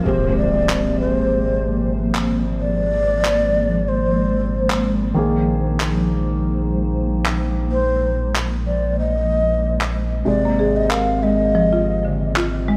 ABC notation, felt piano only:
X:1
M:4/4
L:1/8
Q:"Swing 16ths" 1/4=94
K:Ablyd
V:1 name="Felt piano" clef=bass
[C,A,G]8- | [C,A,G]8 | [E,B,A]8- | [E,B,A]8 |
[C,A,]8 |]